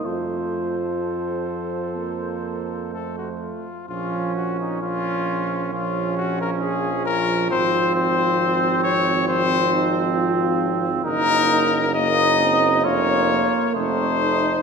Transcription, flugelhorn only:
\new Staff \with { instrumentName = "Flugelhorn" } { \time 4/4 \key bes \minor \tempo 4 = 66 c''2.~ c''8 r8 | des'4 des'4 des'2 | c'2 c'2 | ees'4 ees'4 f'4 ees'4 | }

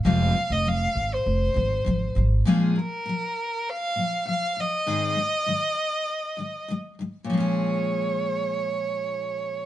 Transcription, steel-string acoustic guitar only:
\new Staff \with { instrumentName = "Steel-string acoustic guitar" } { \clef bass \time 4/4 \key bes \minor \tempo 4 = 100 <f, c f aes c' f'>8 <f, c f>8 <f, c f>8 r4 <f, c f>8 <f, c f>8 <f, c f>8 | <bes, f aes des' aes'>8 <bes, f>8 <bes, f>8 r4 <bes, f>8 <bes, f>8 <bes, f>8 | <aes, ees aes c' ees' aes'>8 <aes, ees aes>8 <aes, ees aes>8 r4 <aes, ees aes>8 <aes, ees aes>8 <aes, ees aes>8 | <bes, f aes des' aes'>1 | }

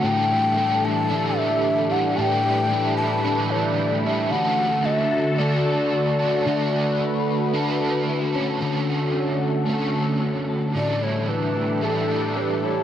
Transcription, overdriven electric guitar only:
\new Staff \with { instrumentName = "Overdriven electric guitar" } { \time 4/4 \key d \major \tempo 4 = 112 <a, d g d' e' a'>4 <g d' e' a'>4 <a, d g d' e' a'>4. <g d' e' a'>8 | <a, d g d' e' a'>4 <g d' e' a'>4 <a, d g d' e' a'>4. <g d' e' a'>8 | <d a cis' fis' a'>2 <d a fis' a'>4. <cis' fis' a'>8 | <d a fis' a'>2 <d a fis' a'>4. <cis' fis' a'>8 |
<d a cis' fis' a'>8 <cis' fis' a'>4. <a cis' fis' a'>2 | <a, d g d' e' a'>2 <g d' e' a'>8 <g d' e' a'>4. | }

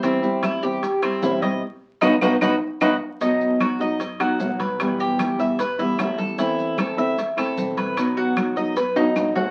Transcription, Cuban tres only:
\new Staff \with { instrumentName = "Cuban tres" } { \time 4/4 \key b \phrygian \tempo 4 = 151 c'4 e'8 g'4 c'8 e'8 dis''8 | r4 <dis' fis' b'>8 <dis' fis' b'>8 <dis' fis' b'>8 r8 <dis' fis' b'>8 r8 | dis'4 fis'8 dis''4 fis'4 b'8~ | b'8 g'4 e''8 b'8 e'4 a'8 |
e'4 a'8 e''4 a'4 b'8~ | b'8 fis'4 dis''8 b'8 dis'4 fis'8 | }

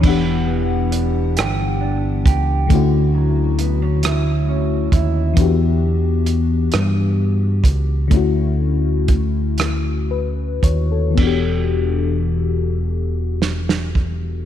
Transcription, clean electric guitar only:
\new Staff \with { instrumentName = "Clean electric guitar" } { \time 6/8 \key e \dorian \tempo 4. = 44 e8 b8 d'8 g'8 d'8 g'8 | d8 fis8 b16 cis'16 e'8 cis'8 e'8 | r2. | r2. |
r2. | }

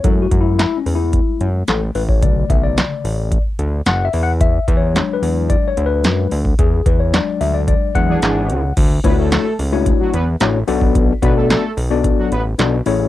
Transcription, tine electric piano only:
<<
  \new Staff \with { instrumentName = "Tine electric piano" } { \time 4/4 \key b \dorian \tempo 4 = 110 \tuplet 3/2 { a'8 fis'8 e'8 e'8 cis'8 e'8~ } e'8. r16 a'8 b'16 cis''16 | d''8 e''16 d''4. r8. \tuplet 3/2 { fis''8 e''8 fis''8 } | \tuplet 3/2 { e''4 cis''8~ cis''8 b'4 d''8 cis''8 b'8~ } b'8. r16 | gis'8 b'16 cis''16 d''8 e''16 d''16 d''8 fis''4. |
r8 <a d' e' eis' fis' cis''>8. r8 <a d' e' fis' cis''>8. r8 <a d' e' fis' cis''>16 r16 <b d' fis' a' d''>8~ | <b d' fis' a' d''>16 r16 <b d' fis' a' d''>8. r8 <b d' fis' a' d''>8. r8 <b d' fis' a' d''>16 r16 <a cis' e' gis' cis''>8 | }
  \new Staff \with { instrumentName = "Tine electric piano" } { \clef bass \time 4/4 \key b \dorian <gis a e'>1 | <cis d a>4. r2 r8 | r4 <fis gis d'>4. r8 <fis gis d'>8 r8 | r4 <fis gis d'>4. <fis gis d'>8 r4 |
r1 | r1 | }
>>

